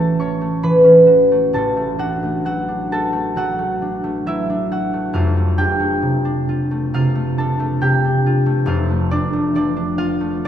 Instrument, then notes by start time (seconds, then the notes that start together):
harp
Already playing: A1 A2 E3 A3 C#4 F#4 A4 B4 A5 B5
0.19 C#4 C#5 C#6
0.41 A3
0.63 E3 B4 B5
0.84 C#4
1.07 F#4
1.32 A3
1.53 A1 A2 A4 A5
1.77 A3
1.98 D4 F#4 F#5
2.23 A3
2.45 F#3 F#4 F#5
2.68 D4
2.92 F#4 A4 A5
3.13 A3
3.36 F#3 F#4 F#5
3.59 A3
3.82 D4
4.04 A3
4.26 F#3 E4 E5
4.50 D4
4.72 F#4 F#5
4.93 A3
5.13 F1 F2 F4 F5
5.37 A3
5.58 D4 G4 G5
5.80 A3
6.02 C3
6.25 D4
6.49 F4
6.71 A3
6.94 C3 F4 F5
7.15 A3
7.38 D4 A4 A5
7.60 A3
7.81 C3 G4 G5
8.05 D4
8.26 F4
8.46 A3
8.66 F1 F2 F4 F5
8.90 A3
9.11 D4 D5
9.33 A3
9.55 F3 D4 D5
9.77 D4
9.98 F4 F5
10.21 A3
10.45 F3